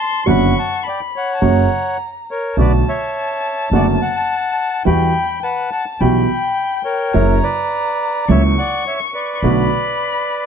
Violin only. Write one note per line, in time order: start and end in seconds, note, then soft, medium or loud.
0.00 0.28 C6 loud
0.27 0.84 C#6 medium
0.83 1.34 B5 medium
1.35 1.43 A5 soft
1.41 2.28 A#5 medium
2.57 4.82 A5 medium
4.87 5.45 G5 medium
5.44 6.03 A5 medium
6.01 7.16 G5 medium
7.14 8.30 A#5 medium
8.28 9.34 C#6 medium
9.35 9.42 C#6 medium
9.41 10.46 B5 medium